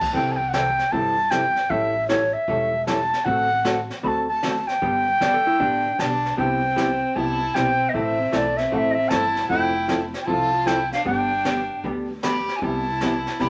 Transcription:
Already playing: A5
0.01 kick, crash
0.13 C2 C3 E3 G3 C4 E4 A4 G5, brush sweep, kick
0.32 A5
0.36 G5
0.49 F#5
0.53 C3 E3 G3 C4 E4 A4 G5, snare, hi-hat pedal
0.79 snare
0.92 G1 C3 E3 G3 C4 E4 A4 A5, brush sweep, kick
1.31 C3 E3 G3 C4 E4 A4 G5, snare, hi-hat pedal
1.56 snare
1.70 A1 E3 G3 C#4 E4 A4 E5, brush sweep, kick
2.08 E3 G3 C#4 E4 A4 C#5, snare, hi-hat pedal
2.33 E5
2.48 E1 E3 G3 C#4 E4 A4, brush sweep, kick
2.86 E3 G3 C#4 E4 A4 A5, snare, hi-hat pedal
3.13 snare
3.25 A1 D3 A3 C4 F#4 A4 F#5, brush sweep, kick
3.65 D3 A3 C4 F#4 A4, snare, hi-hat pedal
3.90 snare
4.03 D2 D3 A3 C4 F#4 A4 B5, brush sweep, kick
4.08 A5
4.29 A5
4.43 D3 A3 C4 F#4 A4, snare, hi-hat pedal
4.67 G5, snare
4.82 G1 D3 G3 B3 D4 G4, brush sweep, kick
5.20 G1 D3 G3 B3 D4 G4 D5, snare, hi-hat pedal
5.34 A4
5.47 E4
5.60 A1 D3 G3 B3 D4 G4, brush sweep, kick
5.99 B1 D3 G3 B3 D4 G4 A5, snare, hi-hat pedal
6.25 snare
6.37 C2 C3 G3 B3 C4 E4 G4 G5, brush sweep, kick
6.76 C3 G3 B3 E4 G4, snare, hi-hat pedal
7.16 C2 C3 G3 B3 E4 G4 A5, brush sweep, kick
7.55 B1 C3 G3 B3 C4 E4 G4 G5, snare, hi-hat pedal
7.89 B3 D#5
7.93 A1 E3 A3 C4 E4 A4 E5, brush sweep, kick
8.31 B1 E3 A3 C4 E4 A4 E5, snare, hi-hat pedal
8.36 D5
8.57 C4 E5, snare
8.72 A1 E3 A3 C4 E4 A4 F#5, brush sweep, kick
8.77 E5
8.91 D#5 E5
9.09 G1 E3 A3 C4 E4 A4 A5, snare, hi-hat pedal
9.36 snare
9.49 F1 F3 C4 E4 A4 G5, brush sweep, kick
9.88 F3 C4 E4 A4, snare, hi-hat pedal
10.14 snare
10.22 E4 G5
10.26 C2 F3 C4 E4 A4 A5, brush sweep, kick
10.31 F4
10.66 F3 C4 E4 A4 G5, snare, hi-hat pedal
10.92 D4 F5, snare
11.05 G1 D3 G3 B3 D4 G4 G5, brush sweep, kick
11.45 D3 G3 B3 D4 G4, snare, hi-hat pedal
11.84 D2 D3 G3 B3 D4 G4, brush sweep, kick
12.23 D3 G3 B3 D4 G4 B5, snare, hi-hat pedal
12.48 snare
12.56 E4 G#5
12.62 C2 C3 G3 B3 E4 G4 A5, brush sweep, kick
13.01 C3 G3 B3 E4 G4, snare, hi-hat pedal
13.27 snare
13.40 C2 C3 G3 B3 E4 G4 B5, brush sweep, kick, snare

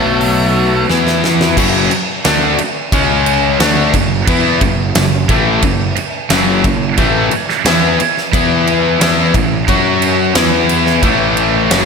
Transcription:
Already playing: B1 B2 F#3 A3 B3
0.21 open hi-hat
0.89 E2 E3 B3 E4, snare
1.07 snare
1.24 snare
1.41 snare
1.57 F#1 F#2 C#3 F#3, kick, crash
1.91 muted overdriven electric guitar stroke, muted distorted electric guitar stroke, muted picked electric bass stroke, crash
2.25 D2 D3 A3 D4, snare, crash
2.58 muted picked electric bass stroke, muted overdriven electric guitar stroke, muted distorted electric guitar stroke, crash
2.92 C#2 C#3 G#3 C#4, kick, crash
3.26 crash
3.59 D2 D3 A3 D4, snare, crash
3.94 F#1 F#2 C#3, kick, crash
4.27 E2 E3 B3 E4, kick, crash
4.61 F#1 F#2 C#3, kick, crash
4.95 F#1 F#2 C#3, snare, crash
5.29 A1 A2 E3 A3, kick, crash
5.62 F#1 F#2 C#3, kick, crash
5.96 muted distorted electric guitar stroke, muted picked electric bass stroke, muted overdriven electric guitar stroke, crash
6.30 F#1 F#2 C#3 F#3, snare, crash
6.64 F#1 F#2 C#3, kick, crash
6.97 A1 A2 E3 A3, kick, crash
7.31 muted distorted electric guitar stroke, muted picked electric bass stroke, muted overdriven electric guitar stroke, crash
7.49 snare
7.65 E2 E3 B3 E4, snare, crash
7.99 muted distorted electric guitar stroke, muted picked electric bass stroke, muted overdriven electric guitar stroke, crash
8.17 snare
8.33 E2 E3 B3 E4, kick, crash
8.67 crash
9.00 E2 E3 B3 E4, snare, crash
9.34 A1 A2 E3, kick, crash
9.68 F#2 F#3 C#4 F#4, kick, crash
10.02 crash
10.35 E2 E3 B3 E4, snare, crash
10.69 crash
10.86 snare
11.02 A1 A2 E3 A3, kick, crash
11.37 crash
11.70 F#1 F#2 C#3 F#3, snare, crash

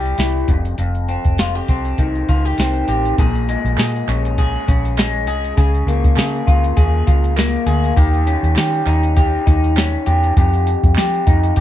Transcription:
Already playing: C2 C3 G3 E4 G4
0.05 closed hi-hat
0.18 C2 E4, snare, closed hi-hat
0.48 F1 F2, kick, closed hi-hat
0.65 closed hi-hat
0.78 F1 F2, closed hi-hat
0.95 closed hi-hat
1.08 C4, closed hi-hat
1.25 F1, kick, closed hi-hat
1.38 F4, snare, closed hi-hat
1.55 G4, closed hi-hat
1.68 C2 C4, kick, closed hi-hat
1.85 closed hi-hat
1.98 C2 D#3, kick, closed hi-hat
2.15 closed hi-hat
2.29 C#2 F4, kick, closed hi-hat
2.45 G4, closed hi-hat
2.58 C2 C4, snare, closed hi-hat
2.75 closed hi-hat
2.88 A1 G4, closed hi-hat
3.05 closed hi-hat
3.18 A#1 A#2 G#4, kick, closed hi-hat
3.35 closed hi-hat
3.49 G#3, closed hi-hat
3.64 A#1, closed hi-hat
3.78 A#2 G#4, snare, clap, closed hi-hat
3.96 closed hi-hat
4.08 A#1 C#4, clap, closed hi-hat
4.25 closed hi-hat
4.38 G#4, kick, closed hi-hat
4.68 A#1 C#4, kick, closed hi-hat
4.85 closed hi-hat
4.97 G#3, snare, clap, closed hi-hat
5.27 C2 G#4, closed hi-hat
5.45 closed hi-hat
5.57 C#2 C#3 G#4, kick, closed hi-hat
5.74 closed hi-hat
5.87 C#2 A#3, closed hi-hat
6.04 kick, closed hi-hat
6.16 C#3 G#4, snare, clap, closed hi-hat
6.35 closed hi-hat
6.47 C#2 F4, kick, closed hi-hat
6.64 closed hi-hat
6.77 D#2 G#4, kick, closed hi-hat
7.07 C#2 F4, kick, closed hi-hat
7.24 closed hi-hat
7.37 A#3, snare, clap, closed hi-hat
7.66 D2 G#4, closed hi-hat
7.84 closed hi-hat
7.96 D#2 D#3 G4, kick, closed hi-hat
8.14 closed hi-hat
8.27 C#4, closed hi-hat
8.43 D#2, closed hi-hat
8.56 D#3 G4, snare, clap, closed hi-hat
8.74 closed hi-hat
8.86 D#2 D#4, clap, closed hi-hat
9.03 closed hi-hat
9.16 G4, kick, closed hi-hat
9.46 D#2 D#4, kick, closed hi-hat
9.64 closed hi-hat
9.76 C#4, snare, clap, closed hi-hat
10.06 E2 G4, closed hi-hat
10.24 closed hi-hat
10.37 F2 G4, kick, closed hi-hat
10.54 closed hi-hat
10.67 closed hi-hat
10.83 F2, kick, closed hi-hat
10.95 F3 G4, snare, clap, closed hi-hat
11.14 closed hi-hat
11.27 F2 D#4, kick, closed hi-hat
11.43 closed hi-hat
11.56 G2 G4, kick, closed hi-hat

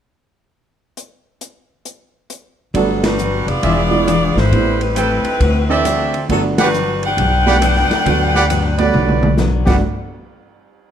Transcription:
0.97 closed hi-hat
1.41 closed hi-hat
1.85 closed hi-hat
2.30 closed hi-hat
2.74 G1 G2 F#3 G3 A3 B3 D4 F#4 A4, kick, ride
3.03 G3 D4 F#4 B4, snare, ride
3.19 G2 F#3 B3 D4, hi-hat pedal
3.47 F1 B3 F4 G#4 D5, ride
3.62 E1 E3 G#3 D4 F4 G#4 D5 E5, kick, ride
3.91 F3 G#3 B3 D4 E4
4.07 E3 G#3 D4 F4, cross-stick, hi-hat pedal, ride
4.35 G#1 G3 E4 B4 C5, snare
4.51 A1 G3 A3 B3 C4 E4 G4 B4, kick, ride
4.81 G3 C4 E4 B4, ride
4.96 A3 C4 G4 A4 B4 G5, hi-hat pedal, ride
5.24 muted upright bass stroke, ride
5.40 D2 D3 A3 C4 F#4, kick, ride
5.69 E3 A3 C4 D4 E4 A4 D5 E5
5.84 D3 A3 C4 F#4, cross-stick, hi-hat pedal, ride
6.14 ride
6.28 G1 G2 F#3 G3 A3 B3 D4 F#4 A4, kick, ride
6.58 G3 D4 F#4 G4 B4 D5 F#5, snare, ride
6.73 G2 F#3 B3 D4, hi-hat pedal
7.03 D4 B4 F#5 G5, ride
7.17 B1 G2 F#3 B3 D4, kick, ride
7.46 G3 A3 B3 D4 F#4 G4 B4 D5 F#5, snare
7.61 G2 F#3 B3 D4, cross-stick, hi-hat pedal, ride
7.76 snare
7.90 muted upright bass stroke, snare, ride
8.04 D2 G2 F#3 G3 A3 B3 D4 F#4, kick, ride
8.34 G4 B4 D5 F#5, snare
8.49 G2 F#3 B3 D4, hi-hat pedal, ride
8.78 F#3 G3 A3 B3 D4 B4 D5, ride
8.93 B1 G2 F#3 B3 D4, mid tom
9.09 mid tom
9.23 mid tom
9.37 G2 F#3 B3 D4, snare, hi-hat pedal
9.65 G1 G2 F#3 G3 A3 B3 D4 F#4 G4 B4 D5 F#5, kick, snare, crash

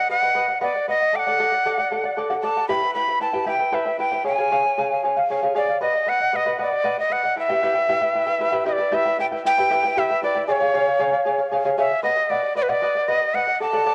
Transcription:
0.09 B4 D#5 F#5
0.23 B4 D#5 F#5
0.35 B4 D#5 F#5
0.48 D#5 F#5
0.61 B4 D5 D#5 F#5
0.75 D#5 F#5
0.88 B4 D#5 F#5
1.01 D#5 F#5
1.13 A4 D5 F#5 G5
1.19 F#5
1.27 A4 D5 F#5
1.39 A4 D5 F#5
1.52 D5 F#5
1.65 A4 D5 F#5
1.78 D5 F#5
1.91 A4 D5 F#5
2.04 D5 F#5
2.17 A4 D5 F#5
2.30 A4 D5 F#5
2.43 A4 D5 F#5 A5
2.57 D5 F#5
2.68 E4 G4 B4 E5 G5 B5
2.82 E4 B4 G5
2.95 E4 B4 E5 G5 B5
3.08 E4 B4 G5
3.20 E4 B4 E5 G5 A5
3.33 E4 G4 B4 E5 G5
3.46 E4 G4 B4 E5 G5
3.59 E4 B4 G5
3.72 E4 G4 B4 E5 G5
3.86 E4 B4 G5
3.99 E4 B4 E5 G5
4.12 E4 B4 G5
4.24 G#4 C#5 F5 G#5
4.38 G#4 C#5 F5
4.51 G#4 C#5 F5
4.64 C#5 F5
4.78 G#4 C#5 F5
4.91 C#5 F5
5.03 G#4 C#5 F5
5.17 C#5 F5
5.30 G#4 C#5 F5
5.43 G#4 C#5 F5
5.55 G#4 C#5 D5 F5
5.68 C#5 F5
5.81 B4 D#5 F#5
5.94 D#5 F#5
6.06 B4 D#5 F#5
6.20 D#5 F#5
6.33 B4 D#5 F#5
6.46 B4 D#5 F#5
6.59 B4 D5 D#5 F#5
6.71 D#5 F#5
6.84 B4 D#5 F#5
6.98 D#5 F#5
7.10 B4 D#5 F#5
7.23 D#5 F#5
7.36 E4 B4 E5 G5
7.49 E4 G4 B4 E5 G5
7.62 E4 G4 B4 E5 G5
7.75 E4 B4 G5
7.89 E4 G4 B4 E5 G5
8.01 E4 B4 G5
8.15 E4 B4 E5 G5
8.27 E4 B4 G5
8.40 E4 B4 E5 G5
8.52 E4 G4 B4 E5 G5
8.65 E4 G4 B4 D#5 E5 G5
8.72 D5
8.79 E4 B4 G5
8.92 E4 G4 B4 E5 G5
9.05 E4 B4 G5
9.19 E4 B4 E5 G5
9.32 E4 B4 G5
9.45 E4 B4 E5 G5
9.58 E4 G4 B4 E5 G5
9.70 E4 G4 B4 E5 G5
9.84 E4 B4 G5
9.97 E4 G4 B4 E5 G5
10.10 E4 B4 G5
10.22 E4 B4 D5 E5 G5
10.35 E4 B4 G5
10.47 G#4 C#5 D5 F5
10.51 C#5
10.61 G#4 C#5 F5
10.73 G#4 C#5 F5
10.87 C#5 F5
10.99 G#4 C#5 F5
11.12 C#5 F5
11.25 G#4 C#5 F5
11.38 C#5 F5
11.51 G#4 C#5 F5
11.65 G#4 C#5 F5
11.78 G#4 C#5 E5 F5
11.90 C#5 F5
12.03 B4 D#5 F#5
12.17 D#5 F#5
12.30 B4 D5 D#5 F#5
12.43 D#5 F#5
12.55 B4 D5 D#5 F#5
12.63 B4
12.69 B4 D5 D#5 F#5
12.82 B4 D#5 F#5
12.95 D#5 F#5
13.08 B4 D#5 F#5
13.21 D#5 F#5
13.34 B4 D#5 F#5
13.47 D#5 F#5
13.60 A4 D5 F#5 A5
13.73 A4 D5 F#5
13.86 A4 D5 F#5

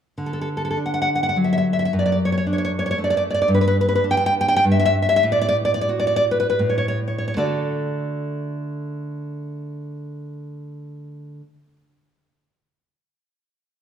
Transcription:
0.18 D3
0.26 A4
0.33 A4
0.41 A4
0.57 A4
0.65 A4
0.71 A4
0.77 D4
0.86 F#5
0.94 F#5
1.02 F#5
1.15 F#5
1.23 F#5
1.29 F#5
1.36 F#3
1.44 E5
1.53 E5
1.58 E5
1.73 E5
1.79 E5
1.85 E5
1.93 F#2
1.99 D5
2.06 D5
2.12 D5
2.25 C#5
2.32 C#5
2.38 C#5
2.47 D4
2.53 C#5
2.58 C#5
2.65 C#5
2.79 C#5
2.86 C#5
2.91 C#5
2.98 A3
3.04 D5
3.10 D5
3.17 D5
3.31 D5
3.42 D5
3.48 G2
3.55 B4
3.61 B4
3.68 B4
3.81 B4
3.89 B4
3.95 B4
4.04 D4
4.11 G5
4.17 G5
4.26 G5
4.41 G5
4.48 G5
4.56 G5
4.64 G2
4.72 E5
4.80 E5
4.85 E5
5.02 E5
5.09 E5
5.16 E5
5.23 A2
5.32 D5
5.42 D5
5.49 D5
5.65 D5
5.74 D5
5.81 D5
5.89 F#4
6.00 D5
6.07 D5
6.16 D5
6.31 B4
6.40 B4
6.50 B4
6.59 A2
6.70 C#5
6.78 C#5
6.88 C#5
7.08 C#5
7.18 C#5
7.28 C#5
7.37 D3 A3 F#4 A4 D5

